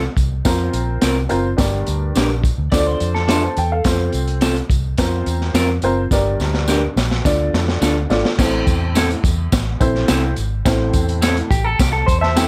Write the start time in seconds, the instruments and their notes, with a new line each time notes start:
0.17 fingered electric bass C2, kick, closed hi-hat, tambourine
0.45 fingered electric bass F2, upright piano C4 F4 A#4 C5, kick, snare, closed hi-hat, tambourine
0.73 fingered electric bass A#1, closed hi-hat, tambourine
1.01 fingered electric bass C2, clean electric guitar C4 F4 A#4, snare, closed hi-hat, tambourine
1.29 fingered electric bass F#1, upright piano C4 F4 A#4 C5, closed hi-hat, tambourine
1.57 fingered electric bass G1, upright piano G2 D4 G4 A#4 D5, kick, snare, closed hi-hat, tambourine
1.87 fingered electric bass D2, closed hi-hat, tambourine
2.16 fingered electric bass A#1, clean electric guitar D4 G4 A#4, snare, closed hi-hat, tambourine
2.44 kick, closed hi-hat, tambourine
2.58 fingered electric bass D2
2.71 fingered electric bass D2, upright piano D3 D4 F4 A4 C5, clean electric guitar D5, kick, snare, closed hi-hat, tambourine
2.80 upright piano D5
2.87 clean electric guitar C5
3.00 fingered electric bass F2, closed hi-hat, tambourine
3.15 clean electric guitar A4, snare
3.28 clean electric guitar D4 F4 A4, upright piano E5 C6, snare, closed hi-hat, tambourine
3.43 upright piano C5 A5
3.57 fingered electric bass E2, upright piano G5, closed hi-hat, tambourine
3.72 upright piano A4 F5
3.84 fingered electric bass F2, upright piano C4 F4 A4 C5, kick, snare, closed hi-hat, tambourine
4.13 fingered electric bass C2, closed hi-hat, tambourine
4.27 closed hi-hat
4.41 clean electric guitar C4 F4 A4, snare, closed hi-hat, tambourine
4.56 closed hi-hat
4.70 fingered electric bass C2, kick, closed hi-hat, tambourine
4.98 fingered electric bass F2, upright piano C4 F4 A#4 C5, kick, snare, closed hi-hat, tambourine
5.26 fingered electric bass E2, closed hi-hat, tambourine
5.41 snare
5.54 fingered electric bass F2, clean electric guitar C4 F4 A#4, snare, closed hi-hat, tambourine
5.82 fingered electric bass F#1, upright piano C4 F4 A#4 C5, closed hi-hat, tambourine
6.11 fingered electric bass G1, upright piano G2 D4 G4 A#4 D5, kick, snare, tambourine
6.40 fingered electric bass D2, snare, tambourine
6.54 snare
6.68 clean electric guitar D4 G4 A#4, snare, tambourine
6.96 fingered electric bass A#1, snare, tambourine
7.11 snare
7.25 fingered electric bass D2, upright piano D3 D4 F4 A4 D5, kick, snare, tambourine
7.53 fingered electric bass F2, snare, tambourine
7.68 snare
7.82 fingered electric bass D2, clean electric guitar D4 F4 A4, snare, tambourine
8.10 fingered electric bass G#1, upright piano D4 F4 A4 D5, snare, tambourine
8.25 snare
8.38 fingered electric bass A1, upright piano A2 C4 E4 A4 C5, kick, snare, crash, tambourine
8.67 fingered electric bass E2, kick, closed hi-hat, tambourine
8.95 clean electric guitar C4 E4 A4, snare, closed hi-hat, tambourine
9.10 closed hi-hat
9.24 fingered electric bass E2, kick, closed hi-hat, tambourine
9.52 fingered electric bass A1, kick, snare, closed hi-hat, tambourine
9.80 fingered electric bass A#1, upright piano C4 E4 A4 C5, kick, closed hi-hat, tambourine
9.95 snare
10.08 fingered electric bass C2, clean electric guitar C4 E4 A4, snare, closed hi-hat, tambourine
10.36 fingered electric bass G#1, closed hi-hat, tambourine
10.65 fingered electric bass A1, upright piano A2 C4 E4 A4 C5, kick, snare, closed hi-hat, tambourine
10.93 fingered electric bass E2, kick, closed hi-hat, tambourine
11.09 closed hi-hat
11.22 clean electric guitar C4 E4 A4, snare, closed hi-hat, tambourine
11.37 closed hi-hat
11.51 fingered electric bass A1, clean electric guitar G4, kick, closed hi-hat, tambourine
11.64 clean electric guitar A4
11.79 fingered electric bass C2, clean electric guitar G4, kick, snare, closed hi-hat, tambourine
11.93 clean electric guitar A4
12.06 fingered electric bass E2, clean electric guitar C5, kick, closed hi-hat, tambourine
12.21 upright piano C5 A5, clean electric guitar E5, snare
12.36 clean electric guitar C4 E4 A4, upright piano G5, snare, closed hi-hat, tambourine